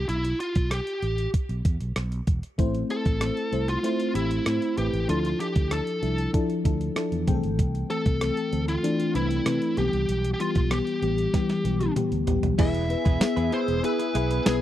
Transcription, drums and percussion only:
0.09 closed hi-hat
0.25 closed hi-hat
0.40 closed hi-hat
0.55 kick, closed hi-hat
0.71 cross-stick, closed hi-hat
0.87 closed hi-hat
1.02 closed hi-hat
1.18 closed hi-hat
1.34 kick, closed hi-hat
1.49 closed hi-hat
1.65 kick, closed hi-hat
1.81 closed hi-hat
1.96 cross-stick, closed hi-hat
2.12 closed hi-hat
2.27 kick, closed hi-hat
2.43 closed hi-hat
2.59 kick, closed hi-hat
2.75 closed hi-hat
2.90 closed hi-hat
3.05 kick, closed hi-hat
3.21 cross-stick, closed hi-hat
3.37 closed hi-hat
3.53 closed hi-hat
3.68 closed hi-hat
3.84 closed hi-hat
4.00 closed hi-hat
4.15 closed hi-hat
4.31 closed hi-hat
4.46 cross-stick, closed hi-hat
4.62 closed hi-hat
4.77 closed hi-hat
4.94 closed hi-hat
5.09 closed hi-hat
5.25 closed hi-hat
5.40 closed hi-hat
5.56 kick, closed hi-hat
5.71 cross-stick, closed hi-hat
5.87 closed hi-hat
6.03 closed hi-hat
6.18 closed hi-hat
6.34 kick, closed hi-hat
6.50 closed hi-hat
6.65 kick, closed hi-hat
6.81 closed hi-hat
6.96 cross-stick, closed hi-hat
7.12 closed hi-hat
7.27 kick, closed hi-hat
7.43 closed hi-hat
7.59 kick, closed hi-hat
7.75 closed hi-hat
7.90 closed hi-hat
8.06 kick, closed hi-hat
8.21 cross-stick, closed hi-hat
8.37 closed hi-hat
8.53 closed hi-hat
8.68 closed hi-hat
8.84 closed hi-hat
9.00 closed hi-hat
9.15 closed hi-hat
9.31 closed hi-hat
9.46 cross-stick, closed hi-hat
9.62 closed hi-hat
9.77 closed hi-hat
9.93 closed hi-hat
10.09 closed hi-hat
10.24 closed hi-hat
10.40 closed hi-hat
10.55 kick, closed hi-hat
10.71 cross-stick, closed hi-hat
10.87 closed hi-hat
11.03 closed hi-hat
11.18 closed hi-hat
11.34 kick, snare, closed hi-hat
11.49 snare, closed hi-hat
11.65 closed hi-hat
11.81 closed hi-hat, high tom
11.96 closed hi-hat, mid tom
12.12 closed hi-hat
12.27 closed hi-hat, floor tom
12.43 closed hi-hat, floor tom
12.59 kick, closed hi-hat, crash
12.74 closed hi-hat
12.90 closed hi-hat
13.05 kick, closed hi-hat
13.21 snare, closed hi-hat, tambourine
13.37 closed hi-hat
13.52 closed hi-hat
13.68 closed hi-hat
13.84 closed hi-hat
13.99 closed hi-hat
14.15 closed hi-hat
14.31 closed hi-hat
14.46 snare, closed hi-hat, tambourine

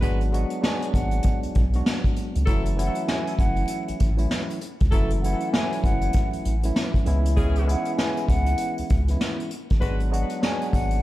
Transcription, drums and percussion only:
0.02 kick, closed hi-hat
0.21 closed hi-hat
0.34 closed hi-hat
0.50 closed hi-hat
0.64 snare
0.82 closed hi-hat
0.94 kick, closed hi-hat
1.11 closed hi-hat
1.23 kick, closed hi-hat
1.43 closed hi-hat
1.55 kick, closed hi-hat
1.73 closed hi-hat
1.86 snare
2.04 kick, closed hi-hat
2.16 closed hi-hat
2.35 closed hi-hat
2.47 kick, closed hi-hat
2.65 closed hi-hat
2.79 closed hi-hat
2.95 closed hi-hat
3.08 snare
3.27 closed hi-hat
3.39 kick, closed hi-hat
3.56 closed hi-hat
3.67 closed hi-hat
3.88 closed hi-hat
4.00 kick, closed hi-hat
4.18 closed hi-hat
4.31 snare
4.50 closed hi-hat
4.61 closed hi-hat
4.80 kick, closed hi-hat
4.92 kick, closed hi-hat
5.10 closed hi-hat
5.24 closed hi-hat
5.40 closed hi-hat
5.54 snare
5.72 closed hi-hat
5.84 kick, closed hi-hat
6.01 closed hi-hat
6.13 kick, closed hi-hat
6.33 closed hi-hat
6.45 closed hi-hat
6.63 closed hi-hat
6.76 snare
6.94 kick, closed hi-hat
7.06 closed hi-hat
7.25 closed hi-hat
7.37 kick, closed hi-hat
7.55 closed hi-hat
7.69 closed hi-hat
7.85 closed hi-hat
7.98 snare
8.17 closed hi-hat
8.29 kick, closed hi-hat
8.46 closed hi-hat
8.58 closed hi-hat
8.78 closed hi-hat
8.90 kick, closed hi-hat
9.08 closed hi-hat
9.21 snare
9.40 closed hi-hat
9.51 closed hi-hat
9.70 kick, closed hi-hat
9.82 kick, closed hi-hat
10.00 closed hi-hat
10.13 closed hi-hat
10.29 closed hi-hat
10.43 snare
10.61 closed hi-hat
10.73 kick, closed hi-hat
10.90 closed hi-hat

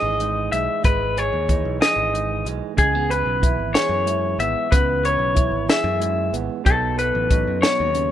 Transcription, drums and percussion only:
0.20 closed hi-hat
0.53 closed hi-hat
0.84 kick, closed hi-hat
1.17 closed hi-hat
1.49 kick, closed hi-hat
1.82 snare, closed hi-hat
2.15 closed hi-hat
2.46 closed hi-hat
2.78 kick, closed hi-hat
3.11 closed hi-hat
3.43 kick, closed hi-hat
3.75 snare, closed hi-hat
4.07 closed hi-hat
4.40 closed hi-hat
4.72 kick, closed hi-hat
5.05 closed hi-hat
5.36 kick, closed hi-hat
5.69 snare, closed hi-hat
6.02 closed hi-hat
6.34 closed hi-hat
6.66 kick, closed hi-hat
6.99 closed hi-hat
7.31 kick, closed hi-hat
7.63 snare, closed hi-hat
7.95 closed hi-hat

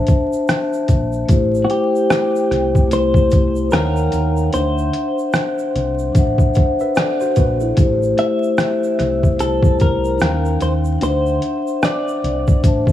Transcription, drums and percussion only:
0.07 kick, closed hi-hat, shaker
0.33 shaker
0.48 cross-stick, closed hi-hat, shaker
0.73 shaker
0.88 kick, closed hi-hat, shaker
1.13 shaker
1.29 kick, closed hi-hat, shaker
1.55 shaker
1.70 closed hi-hat
1.96 shaker
2.10 cross-stick, closed hi-hat, shaker
2.36 shaker
2.51 cross-stick, closed hi-hat
2.75 kick, shaker
2.91 closed hi-hat, shaker
3.14 kick, shaker
3.31 kick, closed hi-hat, shaker
3.56 shaker
3.71 cross-stick, closed hi-hat, shaker
3.97 shaker
4.12 closed hi-hat, shaker
4.37 shaker
4.53 closed hi-hat, shaker
4.78 shaker
4.93 closed hi-hat
5.19 shaker
5.33 cross-stick, closed hi-hat, shaker
5.59 shaker
5.76 closed hi-hat
5.99 shaker
6.15 kick, closed hi-hat, shaker
6.38 kick, shaker
6.55 kick, closed hi-hat, shaker
6.80 shaker
6.95 cross-stick, closed hi-hat, shaker
7.21 shaker
7.36 kick, closed hi-hat, shaker
7.60 shaker
7.77 kick, closed hi-hat, shaker
8.03 shaker
8.18 closed hi-hat
8.43 shaker
8.58 cross-stick, closed hi-hat, shaker
8.84 shaker
8.99 cross-stick, closed hi-hat
9.23 kick, shaker
9.39 closed hi-hat, shaker
9.63 kick, shaker
9.79 kick, closed hi-hat, shaker
10.04 shaker
10.20 cross-stick, closed hi-hat, shaker
10.45 shaker
10.61 closed hi-hat, shaker
10.85 shaker
11.01 closed hi-hat, shaker
11.26 shaker
11.42 closed hi-hat
11.67 shaker
11.83 cross-stick, closed hi-hat, shaker
12.08 shaker
12.24 closed hi-hat
12.48 kick, shaker
12.64 kick, closed hi-hat, shaker
12.87 kick, shaker

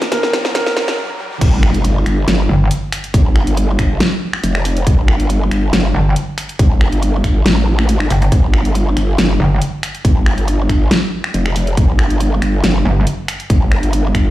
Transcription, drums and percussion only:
0.02 snare, closed hi-hat
0.12 kick, snare, closed hi-hat
0.23 snare
0.33 snare, closed hi-hat
0.45 snare
0.55 kick, snare, closed hi-hat
0.66 snare
0.77 snare
0.88 snare
1.41 kick, closed hi-hat, crash
1.63 finger snap
1.74 closed hi-hat
1.85 closed hi-hat
2.06 finger snap, closed hi-hat
2.28 snare, closed hi-hat
2.71 closed hi-hat
2.92 finger snap, open hi-hat
3.04 closed hi-hat
3.14 kick, closed hi-hat
3.36 finger snap
3.47 closed hi-hat
3.57 closed hi-hat
3.79 finger snap, kick, closed hi-hat
4.00 snare, closed hi-hat
4.33 finger snap
4.44 closed hi-hat
4.55 finger snap
4.65 open hi-hat
4.77 closed hi-hat
4.87 kick, closed hi-hat
5.08 finger snap
5.20 closed hi-hat
5.30 closed hi-hat
5.51 finger snap, closed hi-hat
5.73 snare, closed hi-hat
6.16 closed hi-hat
6.38 finger snap, open hi-hat
6.49 closed hi-hat
6.59 kick, closed hi-hat
6.81 finger snap
6.92 closed hi-hat
7.03 closed hi-hat
7.24 finger snap, kick, closed hi-hat
7.46 snare, closed hi-hat
7.79 finger snap
7.89 closed hi-hat
8.00 finger snap
8.10 open hi-hat
8.22 closed hi-hat
8.32 kick, closed hi-hat
8.54 finger snap
8.65 closed hi-hat
8.75 closed hi-hat
8.97 finger snap, closed hi-hat
9.18 snare, closed hi-hat
9.62 closed hi-hat
9.83 finger snap, open hi-hat
9.95 closed hi-hat
10.05 kick, closed hi-hat
10.26 finger snap
10.38 closed hi-hat
10.48 closed hi-hat
10.69 finger snap, kick, closed hi-hat
10.91 snare, closed hi-hat
11.24 finger snap
11.34 closed hi-hat
11.46 finger snap
11.56 open hi-hat
11.67 closed hi-hat
11.77 kick, closed hi-hat
11.99 finger snap
12.10 closed hi-hat
12.20 closed hi-hat
12.42 finger snap, closed hi-hat
12.64 snare, closed hi-hat
13.07 closed hi-hat
13.28 finger snap, open hi-hat
13.40 closed hi-hat
13.50 kick, closed hi-hat
13.72 finger snap
13.83 closed hi-hat
13.93 closed hi-hat
14.15 finger snap, kick, closed hi-hat

